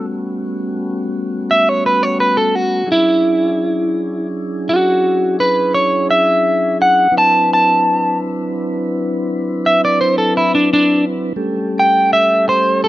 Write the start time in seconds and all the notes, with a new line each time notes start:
Already playing: G3 A3 B3 C#4 F#4
1.51 E5
1.69 C#5
1.86 B4
2.03 C#5
2.20 B4
2.37 A4
2.55 F#4
2.86 F#3 C#4 D4 E4 G#4
2.92 E4
4.69 F#4
5.40 B4
5.74 C#5
6.11 E5
6.82 F#5
7.11 F#3 C4 D4 E4 B4
7.18 A5
7.53 A5
9.66 E5
9.85 D5
10.01 C5
10.18 A4
10.37 E4
10.55 D4
10.73 D4
11.36 G3 A3 C#4 G4 A4
11.79 G5
12.13 E5
12.49 C5
12.84 A4